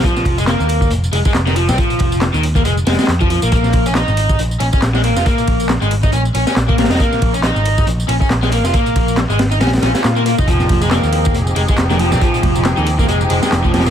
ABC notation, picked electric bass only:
X:1
M:4/4
L:1/16
Q:"Swing 16ths" 1/4=138
K:Fm
V:1 name="Picked electric bass" clef=bass
z2 F,,,3 E,,3 F,,, z F,,, z F,,,3 C,, | z2 F,,,3 E,,3 F,,, z F,,, z F,,3 B,,,- | B,,,2 B,,,3 A,,,3 B,,, z B,,, z B,,,3 F,,, | z2 B,,,3 A,,,3 B,,, z B,,, z B,,,3 F,,, |
z2 B,,,3 A,,,3 B,,, z B,,, z B,,,3 F,,, | z2 B,,,3 A,,,3 B,,, z B,,, z B,,3 F,,,- | F,,,2 F,,,3 E,,3 F,,, z F,,, z F,,,3 C,, | z2 F,,,3 E,,3 F,,, z F,,, z F,,,3 C,, |]